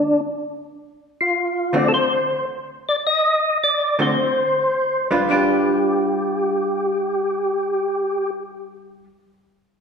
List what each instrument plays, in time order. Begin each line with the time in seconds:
Already playing: tonewheel organ D4
1.21 tonewheel organ F4
1.73 hollow-body jazz guitar D3 A3 C4 F#4, tonewheel organ D5
1.88 tonewheel organ A4
1.94 tonewheel organ C5
2.89 tonewheel organ D5
3.07 tonewheel organ D#5
3.64 tonewheel organ D5
3.99 hollow-body jazz guitar D3 A3 C4 F#4, tonewheel organ C5
5.11 hollow-body jazz guitar G3 D4 F4 B4
5.29 hollow-body jazz guitar G3 D4 F4 B4, tonewheel organ G4